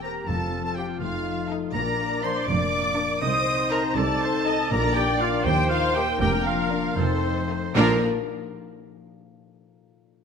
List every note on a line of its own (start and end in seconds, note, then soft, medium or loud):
0.00 0.13 E1 medium
0.00 0.13 E2 medium
0.00 0.31 E3 medium
0.00 0.31 A#3 soft
0.00 0.24 C4 soft
0.00 0.28 G4 soft
0.00 0.29 G4 medium
0.00 0.31 G4 soft
0.00 0.29 A#5 medium
0.00 0.12 A#5 medium
0.04 1.77 C4 soft
0.04 0.23 G4 medium
0.04 0.30 A#4 medium
0.04 0.23 C5 medium
0.04 0.28 A#5 medium
0.27 0.86 F1 medium
0.27 0.86 F2 medium
0.27 0.98 F2 medium
0.27 1.00 F3 medium
0.27 1.00 C4 medium
0.27 1.00 F4 medium
0.27 1.75 F4 medium
0.27 0.64 A4 medium
0.27 0.63 A5 medium
0.27 0.64 A5 medium
0.53 0.76 F4 medium
0.64 0.77 A4 medium
0.64 0.76 A5 medium
0.64 0.77 A5 medium
0.64 0.71 A5 medium
0.75 1.25 F4 soft
0.75 0.96 F4 medium
0.75 0.88 G4 medium
0.75 1.77 C5 soft
0.75 0.96 C5 medium
0.75 1.00 G5 medium
0.75 0.84 G5 medium
1.00 1.59 F1 medium
1.00 1.60 F2 medium
1.00 2.23 F3 medium
1.00 1.75 A3 medium
1.00 1.73 D#4 medium
1.00 1.50 F4 medium
1.00 1.49 F5 medium
1.00 1.50 F5 medium
1.26 1.49 F4 medium
1.50 1.69 D#4 medium
1.50 1.98 F4 medium
1.50 1.69 A4 medium
1.50 1.77 D#5 medium
1.73 2.33 A#1 medium
1.73 2.33 A#2 medium
1.73 2.44 A#2 medium
1.73 3.25 A#2 medium
1.73 3.03 A#3 medium
1.73 3.03 D4 medium
1.73 2.25 A#4 medium
1.73 3.20 D5 medium
1.73 2.25 A#5 medium
1.73 2.20 A#5 loud
1.73 2.21 A#5 medium
1.99 2.73 F4 medium
2.23 3.25 F3 medium
2.23 2.42 D4 medium
2.23 2.42 A#4 medium
2.23 2.48 C5 loud
2.23 2.48 C6 loud
2.23 2.29 C6 medium
2.23 2.47 C6 medium
2.47 3.07 F1 medium
2.47 3.07 F2 loud
2.47 2.97 A#3 medium
2.47 3.21 D5 medium
2.47 3.20 D6 medium
2.47 3.22 D6 loud
2.47 3.21 D6 loud
2.74 3.25 F4 medium
2.97 3.25 A#3 medium
2.97 3.16 D4 medium
2.97 3.16 A#4 medium
3.20 3.81 C2 medium
3.20 3.81 C3 loud
3.20 4.74 C3 medium
3.20 4.68 C4 medium
3.20 4.68 D#4 medium
3.20 3.96 C5 medium
3.20 3.70 D#5 medium
3.20 3.70 D#6 loud
3.47 4.21 D#4 medium
3.71 4.73 C4 medium
3.71 3.91 D#4 medium
3.71 3.91 A4 medium
3.71 3.83 A#4 loud
3.71 3.96 A#5 loud
3.71 3.83 A#5 loud
3.96 4.56 C2 loud
3.96 4.56 C3 loud
3.96 4.45 A3 medium
3.96 4.72 A4 medium
3.96 4.22 D5 medium
3.96 4.71 A5 loud
3.96 4.71 A5 medium
3.96 4.73 A5 medium
4.22 4.74 D#4 medium
4.22 4.47 C5 loud
4.46 4.73 A3 medium
4.46 4.65 D#4 medium
4.46 4.65 A4 medium
4.46 4.71 D#5 medium
4.71 5.31 A#1 loud
4.71 5.48 A#2 medium
4.71 5.31 A#2 medium
4.71 5.42 A#2 medium
4.71 6.94 A#3 medium
4.71 5.44 D4 medium
4.71 4.95 A#4 loud
4.71 5.46 D5 loud
4.71 4.96 A#5 loud
4.71 4.97 A#5 loud
4.71 4.96 A#5 loud
4.96 5.48 F3 medium
4.96 5.07 G4 medium
4.96 5.21 G5 loud
4.96 5.23 G5 loud
4.96 5.21 G5 loud
5.20 5.48 D4 medium
5.20 5.40 D4 medium
5.20 5.47 F4 medium
5.20 5.40 F4 loud
5.20 5.95 A#4 medium
5.20 5.46 F5 medium
5.44 6.06 D#2 loud
5.44 6.23 D#3 loud
5.44 6.21 D#4 medium
5.44 5.72 G4 loud
5.44 6.21 C5 loud
5.44 5.69 G5 loud
5.44 5.70 G5 loud
5.44 5.71 G5 loud
5.69 5.95 D#4 medium
5.69 5.95 F4 loud
5.69 5.96 F5 medium
5.69 5.76 F5 loud
5.69 5.96 F5 loud
5.94 6.15 A#3 medium
5.94 6.15 D#4 medium
5.94 6.23 D#4 medium
5.94 6.07 G4 medium
5.94 6.71 A#4 medium
5.94 6.20 G5 loud
5.94 6.20 G5 medium
5.94 6.20 G5 loud
6.20 6.82 F1 loud
6.20 6.82 F2 loud
6.20 6.93 F2 medium
6.20 6.97 F3 medium
6.20 6.98 D4 medium
6.20 6.33 G4 loud
6.20 6.96 A#4 medium
6.20 6.32 G5 loud
6.20 6.46 G5 loud
6.45 6.71 D4 medium
6.45 6.99 F4 medium
6.45 6.96 F5 medium
6.45 6.97 F5 loud
6.45 6.96 F5 medium
6.72 6.91 A#3 medium
6.72 7.00 D4 medium
6.72 6.91 D4 medium
6.72 7.00 A#4 medium
6.96 7.60 F1 medium
6.96 7.60 F2 medium
6.96 9.29 F3 medium
6.96 7.50 A3 medium
6.96 7.76 C4 medium
6.96 7.50 D#4 medium
6.96 7.36 A4 medium
6.96 7.74 C5 medium
6.96 7.76 C5 loud
7.23 7.49 D#4 medium
7.50 7.70 A3 medium
7.50 7.69 D#4 medium
7.50 7.78 D#4 medium
7.50 7.79 A4 medium
7.72 8.04 A#1 loud
7.72 8.05 A#2 medium
7.72 8.04 A#2 loud
7.72 8.00 A#2 loud
7.72 8.05 A#3 medium
7.72 7.97 A#3 medium
7.72 7.97 D4 medium
7.72 8.05 D4 medium
7.72 8.04 A#4 loud
7.72 8.04 A#5 loud
7.76 8.05 F3 medium
7.76 8.05 A#3 medium
7.76 8.05 D4 loud
7.76 8.05 F4 medium
7.76 7.98 A#4 medium
7.76 8.05 A#4 medium
7.81 8.05 F5 medium